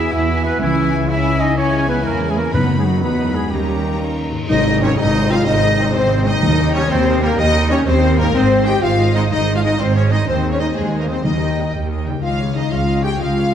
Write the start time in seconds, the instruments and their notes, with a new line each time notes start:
Already playing: trombone section B2 E3, harp E3 E4 G#4 B4 E5 G#5 B5, viola section B3, french horn section B3 E4, cello section E4, violin section E4 G#5, clarinet G#4, trumpet E5, flute section E5
0.05 harp B3
0.12 double bass section E2, clarinet B3, harp E4, cello section E4, trumpet E5, flute section E5
0.21 harp B3
0.28 viola section B3, violin section E4 G#5
0.37 harp B3
0.44 cello section B3, harp E4, trumpet B4, flute section B4
0.52 harp B3
0.60 double bass section C#2, harp C#3, trombone section C#3, cello section E3, french horn section G#3, clarinet C#4, viola section C#4, flute section E4, violin section E4 G#5, trumpet E4
0.68 harp G#3
0.76 harp C#4
0.84 harp E4
0.92 harp G#4
1.01 harp C#5
1.09 viola section C#4, clarinet E4, cello section E4, violin section E4 G#5, flute section E5, harp E5, trumpet E5
1.17 harp G#5
1.26 harp E5
1.33 harp G#5
1.40 cello section D#4, flute section D#5, trumpet D#5, harp E5
1.49 harp G#5
1.56 cello section C#4, viola section C#4, violin section E4 G#5, flute section C#5, trumpet C#5
1.65 harp G#4
1.73 harp E4
1.81 harp G#3
1.88 cello section B3, harp C#4, flute section B4, trumpet B4
1.97 harp G#3
2.04 double bass section E2, cello section A#3, harp C#4, flute section A#4, trumpet A#4
2.13 harp G#3
2.21 harp C#4
2.29 harp G#3, cello section G#3, flute section G#4, trumpet G#4
2.37 cello section A#3, harp C#4, flute section A#4, trumpet A#4
2.46 harp G#3
2.52 harp F#2, timpani F#2, double bass section F#2, trombone section D#3 F#3, cello section B3, french horn section B3 D#4, viola section B3, clarinet D#4, violin section D#4 B5, flute section B4, trumpet B4
2.62 harp F#3
2.78 cello section G#3, harp D#4, flute section G#4, trumpet G#4
2.85 cello section F#3, trumpet F#4, flute section F#4, harp B4
2.94 harp D#4
3.01 double bass section E2, clarinet B3, cello section B3, viola section B3, violin section D#4 B5, flute section B4, trumpet B4, harp D#5
3.11 harp B5
3.19 harp D#5
3.35 cello section G#3, flute section G#4, trumpet G#4, harp D#5
3.51 double bass section D#2, harp D#3, cello section G3, trombone section A#3, viola section C#4, french horn section C#4, clarinet D#4, violin section D#4 A#5, trumpet G4, flute section G4
3.60 harp A#3
3.67 harp C#4
3.76 harp D#4
3.83 harp A#4
3.92 harp C#5
4.00 harp D#5
4.08 harp A#5
4.16 harp D#5
4.24 harp A#5
4.31 harp G#2 D#5
4.35 harp C4
4.40 harp D#4 A#5
4.44 french horn section D#4, harp G#4
4.49 double bass section G#1, cello section G#2, trumpet D#4, viola section D#4 C5, violin section D#5, flute section D#5, tam-tam
4.66 viola section G#4 D#5
4.81 trombone section D#3 C4, french horn section C#4, trumpet C#4, viola section D#4 C5, violin section C#5, flute section C#5
4.98 double bass section G#1, cello section G#2, trumpet D#4, french horn section D#4, viola section G#4 D#5, flute section D#5, violin section D#5
5.14 viola section D#4 C5
5.30 trombone section D#3 C4, french horn section F4, trumpet F4, viola section G#4 D#5, flute section F5, violin section F5
5.45 double bass section G#1, cello section G#2, french horn section D#4, viola section D#4 C5, trumpet D#4, violin section D#5, flute section D#5
5.62 viola section G#4 D#5
5.78 trombone section D#3 C4, viola section D#4 C5
5.93 double bass section G#1, cello section G#2, french horn section C4, trumpet C4, viola section G#4 D#5, violin section C5, flute section C5
6.10 viola section D#4 C5
6.25 harp D#3, trombone section D#3 C4, french horn section D#4, trumpet D#4, viola section G#4 D#5, violin section D#5, flute section D#5
6.29 harp A#3
6.34 harp D#4
6.38 harp G4
6.43 double bass section D#2, cello section D#2, timpani D#3, viola section A#4 D#5
6.59 viola section G4 G5
6.73 trombone section D#3 G3, french horn section C#4, trumpet C#4, viola section A#4 D#5, violin section C#5, flute section C#5
6.90 cello section D#2, double bass section D#2, french horn section C4, trumpet C4, viola section G4 G5, violin section C5, flute section C5
7.08 viola section A#4 D#5
7.22 trombone section D#3 G3, french horn section A#3, trumpet A#3, viola section G4 G5, violin section A#4, flute section A#4
7.37 double bass section D#2, cello section D#2, french horn section D#4, trumpet D#4, viola section A#4 D#5, violin section D#5, flute section D#5
7.55 viola section G4 G5
7.70 trombone section D#3 G3, trumpet C#4, french horn section C#4, viola section A#4 D#5, violin section C#5, flute section C#5
7.86 double bass section D#2, cello section D#2, french horn section C4, trumpet C4, viola section G4 G5, violin section C5, flute section C5
8.02 viola section A#4 D#5
8.17 harp G#2, trombone section D#3 G3, trumpet A#3, french horn section A#3, viola section G4 G5, flute section A#4, violin section A#4
8.21 harp G#3
8.26 harp D#4
8.30 double bass section G#1, french horn section C4, harp G#4
8.35 cello section G#2, trumpet C4, viola section C5 D#5, flute section C5, violin section C5
8.51 viola section G#4 C5
8.66 trombone section D#3 G#3, trumpet G4, french horn section G4, viola section C5 D#5, violin section G5, flute section G5
8.82 double bass section G#1, cello section G#2, french horn section F4, trumpet F4, viola section G#4 C5, violin section F5, flute section F5
8.99 viola section C5 D#5
9.15 trombone section D#3 G#3, trumpet D#4, french horn section D#4, viola section G#4 C5, violin section D#5, flute section D#5
9.31 double bass section G#1, cello section G#2, french horn section D#4, trumpet D#4, viola section C5 D#5, flute section D#5, violin section D#5
9.47 viola section G#4 C5
9.55 trumpet F4, french horn section F4, violin section F5, flute section F5
9.63 trombone section D#3 G#3, french horn section D#4, trumpet D#4, viola section C5 D#5, flute section D#5, violin section D#5
9.79 double bass section G#1, cello section G#2, trumpet C4, french horn section C4, viola section G#4 C5, flute section C5, violin section C5
9.95 trumpet C#4, french horn section C#4, viola section C5 D#5, flute section C#5, violin section C#5
10.10 harp D#3, trombone section D#3 G#3, trumpet D#4, french horn section D#4, viola section G#4 C5, flute section D#5, violin section D#5
10.15 harp G#3
10.19 harp D#4
10.24 cello section D#2, french horn section C4, harp G#4, violin section C5
10.28 double bass section D#2, trumpet C4, flute section C5, violin section C5, viola section C5 D#5
10.44 viola section G#4 C5
10.52 trumpet C#4, french horn section C#4, violin section C#5, flute section C#5
10.59 trombone section D#3 G#3, french horn section D#4, trumpet D#4, viola section C5 D#5, violin section D#5, flute section D#5
10.75 cello section D#2, double bass section D#2, french horn section G#3, trumpet G#3, violin section G#4, viola section G#4 C5, flute section G#4
10.92 viola section C5 D#5
11.00 trumpet A#3, french horn section A#3, violin section A#4, flute section A#4
11.07 harp D#3, trombone section D#3 G#3, french horn section C4, trumpet C4, viola section G#4 C5, violin section C5, flute section C5
11.12 harp A#3
11.16 harp D#4
11.21 timpani D#3, french horn section D#4, harp G4, violin section D#5
11.25 cello section D#2, double bass section D#2, trumpet D#4, viola section A#4 D#5, violin section D#5, flute section D#5
11.41 viola section G4 G5
11.57 trombone section D#3 G3, viola section A#4 D#5
11.74 double bass section D#2, cello section D#2, viola section G4 G5
11.91 viola section A#4 D#5
12.05 harp C#3, trombone section D#3 G3, viola section G4 G5
12.10 harp C#4
12.14 harp D#4
12.19 double bass section C#2, french horn section F4, harp G#4, flute section F5
12.23 cello section C#2, viola section F4 D#5, trumpet F4, violin section F5
12.39 viola section G#4 C#5
12.55 trombone section D#3 G#3, french horn section D#4, trumpet D#4, viola section F4 D#5, flute section D#5, violin section D#5
12.71 cello section C#2, double bass section C#2, french horn section F4, trumpet F4, viola section G#4 C#5, violin section F5, flute section F5
12.86 viola section F4 D#5
13.02 trombone section D#3 G#3, french horn section G4, trumpet G4, viola section G#4 C#5, violin section G5, flute section G5
13.18 cello section C#2, double bass section C#2, french horn section F4, viola section F4 D#5, trumpet F4, violin section F5, flute section F5
13.35 viola section G#4 C#5